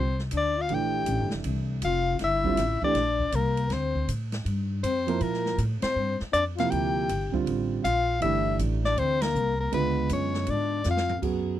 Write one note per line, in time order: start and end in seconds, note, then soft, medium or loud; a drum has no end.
0.00 0.31 C2 medium
0.00 0.17 C4 medium
0.00 0.18 C5 medium
0.19 snare soft
0.31 0.69 D2 medium
0.31 0.59 D4 medium
0.31 hi-hat pedal medium
0.31 ride medium
0.37 0.63 D5 medium
0.58 0.73 F4 medium
0.58 0.76 F5 medium
0.69 1.07 A#1 medium
0.69 1.75 E3 medium
0.69 1.75 A3 medium
0.69 1.75 D4 medium
0.69 1.76 G4 medium
0.69 1.33 G4 medium
0.69 ride soft
0.74 1.34 G5 medium
1.06 1.21 A1 medium
1.06 hi-hat pedal medium
1.06 ride medium
1.21 1.32 G1 medium
1.30 1.44 F1 medium
1.30 snare medium
1.44 1.81 C2 medium
1.44 ride medium
1.82 2.19 F1 medium
1.82 2.19 F4 medium
1.82 2.19 F5 loud
1.82 hi-hat pedal medium
1.82 ride medium
2.19 2.57 G1 medium
2.19 2.79 E4 medium
2.19 snare soft
2.19 ride medium
2.24 2.80 E5 loud
2.44 2.56 D3 medium
2.44 2.57 G3 medium
2.44 2.57 C4 medium
2.44 2.58 F4 medium
2.44 kick medium
2.57 2.81 A1 medium
2.57 snare soft
2.57 hi-hat pedal medium
2.57 ride medium
2.82 2.94 E3 medium
2.82 2.95 A3 medium
2.82 3.35 D4 medium
2.82 2.95 D4 medium
2.82 2.95 G4 medium
2.82 3.37 D5 medium
2.82 muted upright bass stroke soft
2.82 kick medium
2.95 3.31 A#1 medium
2.95 snare soft
2.95 ride medium
3.19 kick medium
3.32 3.69 C2 medium
3.32 3.72 A#3 medium
3.32 3.74 A#4 medium
3.32 hi-hat pedal soft
3.32 ride medium
3.57 ride soft
3.70 4.07 D2 medium
3.70 4.08 C4 medium
3.70 4.09 C5 medium
3.70 snare soft
3.70 ride medium
3.95 kick soft
4.08 4.45 A2 medium
4.08 hi-hat pedal medium
4.08 ride medium
4.32 snare medium
4.32 ride soft
4.45 4.82 G2 medium
4.45 ride medium
4.83 5.20 F2 medium
4.83 5.21 C4 medium
4.83 5.24 C5 medium
4.83 hi-hat pedal soft
4.83 ride medium
5.07 5.55 F3 medium
5.07 5.56 A#3 medium
5.07 5.56 E4 medium
5.07 5.57 A#4 medium
5.07 ride soft
5.20 5.57 A#2 medium
5.20 5.58 A#3 medium
5.20 5.59 A#4 medium
5.20 ride medium
5.34 snare soft
5.46 snare soft
5.58 5.81 A2 medium
5.58 hi-hat pedal medium
5.58 ride medium
5.81 6.17 C4 medium
5.81 6.18 C5 medium
5.81 muted upright bass stroke soft
5.81 snare medium
5.81 ride medium
5.96 6.19 G2 medium
6.20 muted upright bass stroke soft
6.20 snare soft
6.32 6.70 F2 medium
6.32 6.43 D4 medium
6.32 6.44 D5 medium
6.32 hi-hat pedal medium
6.32 ride medium
6.56 7.07 C3 medium
6.56 7.07 F3 medium
6.56 7.07 A#3 medium
6.56 7.07 E4 medium
6.56 6.73 F4 medium
6.56 6.72 F5 medium
6.56 snare soft
6.56 ride soft
6.70 7.08 D2 medium
6.70 7.34 G4 medium
6.70 7.33 G5 medium
6.70 ride medium
7.09 7.32 G1 medium
7.09 hi-hat pedal medium
7.09 ride medium
7.32 7.81 D3 medium
7.32 7.82 G3 medium
7.32 7.82 C4 medium
7.32 7.82 F4 medium
7.32 kick medium
7.46 7.83 A1 medium
7.46 ride medium
7.83 8.21 A#1 medium
7.83 8.19 F4 medium
7.83 8.19 F5 loud
7.83 hi-hat pedal medium
7.83 ride medium
8.20 8.58 G1 medium
8.20 9.26 E3 medium
8.20 9.27 A3 medium
8.20 9.27 D4 medium
8.20 8.57 E4 medium
8.20 9.27 G4 medium
8.20 8.57 E5 loud
8.20 ride medium
8.59 8.96 A1 medium
8.59 hi-hat pedal soft
8.59 ride medium
8.84 8.99 D4 medium
8.84 9.00 D5 medium
8.84 snare soft
8.97 9.33 D2 medium
8.97 9.23 C4 medium
8.97 9.23 C5 medium
8.97 ride medium
9.22 9.58 A#3 medium
9.22 9.59 A#4 medium
9.22 snare medium
9.22 ride medium
9.35 9.71 C2 medium
9.35 hi-hat pedal medium
9.59 9.71 A#3 medium
9.59 9.72 A#4 medium
9.72 10.09 C#2 medium
9.72 10.78 D3 medium
9.72 10.77 G#3 medium
9.72 10.07 B3 medium
9.72 10.77 B3 medium
9.72 10.78 F4 medium
9.72 10.08 B4 medium
9.72 ride medium
10.09 10.47 F#2 medium
10.09 10.51 C#4 medium
10.09 10.52 C#5 medium
10.09 hi-hat pedal medium
10.09 ride medium
10.34 snare soft
10.46 10.84 G#2 medium
10.46 10.85 D4 medium
10.46 10.87 D5 medium
10.46 ride medium
10.84 11.22 F2 medium
10.84 11.15 F4 medium
10.84 snare soft
10.84 hi-hat pedal medium
10.91 11.17 F5 medium
10.97 snare medium
11.09 floor tom medium
11.22 11.59 F#2 medium
11.22 11.60 F#3 medium
11.22 11.60 B3 soft
11.22 11.60 F#4 soft
11.22 11.60 G#4 medium
11.22 kick medium
11.22 crash medium